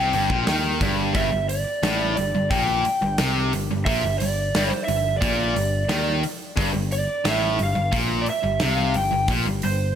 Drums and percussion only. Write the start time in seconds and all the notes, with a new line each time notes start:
0.13 open hi-hat
0.30 kick
0.47 snare, open hi-hat
0.81 kick, open hi-hat
1.15 kick, open hi-hat
1.49 open hi-hat
1.83 snare, open hi-hat
2.17 open hi-hat
2.51 kick, open hi-hat
2.85 open hi-hat
3.18 snare, open hi-hat
3.53 open hi-hat
3.86 kick, open hi-hat
4.20 open hi-hat
4.55 snare, open hi-hat
4.88 open hi-hat
5.22 kick, open hi-hat
5.56 open hi-hat
5.89 snare, open hi-hat
6.23 open hi-hat
6.57 kick, open hi-hat
6.92 open hi-hat
7.25 snare, open hi-hat
7.59 open hi-hat
7.93 kick, open hi-hat
8.26 open hi-hat
8.60 snare, open hi-hat
8.94 open hi-hat
9.28 kick, open hi-hat
9.62 open hi-hat